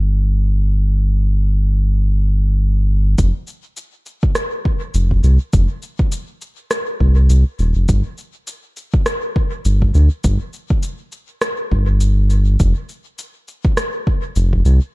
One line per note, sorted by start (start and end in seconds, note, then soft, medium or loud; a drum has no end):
0.00 3.15 G1 medium
3.18 3.33 F1 loud
3.18 kick loud
3.18 shaker medium
3.47 shaker soft
3.77 shaker medium
4.06 shaker soft
4.23 kick loud
4.35 cross-stick medium
4.35 shaker medium
4.65 kick loud
4.94 5.21 F1 medium
4.94 shaker medium
5.11 kick medium
5.24 5.38 C2 loud
5.24 shaker soft
5.53 5.68 F1 loud
5.53 kick loud
5.53 shaker medium
5.82 shaker soft
5.99 kick loud
6.12 shaker medium
6.41 shaker soft
6.71 cross-stick medium
6.71 shaker medium
7.00 7.29 C2 loud
7.00 kick medium
7.29 7.44 C2 loud
7.29 shaker medium
7.59 7.74 D#1 loud
7.59 shaker soft
7.75 7.87 F1 medium
7.88 8.03 G1 loud
7.88 kick loud
7.88 shaker medium
8.18 shaker soft
8.47 shaker medium
8.77 shaker soft
8.94 kick loud
9.06 cross-stick loud
9.06 shaker medium
9.36 kick loud
9.65 9.91 G1 medium
9.65 shaker medium
9.82 kick medium
9.94 10.09 D2 loud
9.94 shaker soft
10.24 10.39 G1 loud
10.24 kick loud
10.24 shaker soft
10.53 shaker soft
10.70 kick loud
10.83 shaker medium
11.12 shaker soft
11.41 cross-stick loud
11.41 shaker medium
11.72 12.57 G1 medium
11.72 kick medium
12.00 shaker soft
12.30 shaker soft
12.60 12.74 F1 loud
12.60 kick loud
12.60 shaker soft
12.89 shaker soft
13.18 shaker soft
13.48 shaker soft
13.65 kick loud
13.77 cross-stick medium
13.77 shaker medium
14.07 kick loud
14.36 14.62 F1 medium
14.36 shaker soft
14.53 kick medium
14.65 14.80 C2 loud
14.65 shaker soft